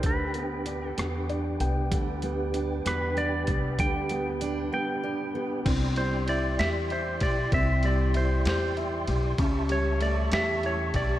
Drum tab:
CC |------|------|------|x-----|
RD |------|------|------|xxxxxx|
HH |xxxxxx|xxxxxx|xxx---|------|
SD |---r--|---r--|------|---o--|
BD |o-----|o----o|o-----|o----o|

CC |------|------|
RD |xxxxxx|xxxxxx|
HH |------|------|
SD |---o--|---o--|
BD |o-----|o----o|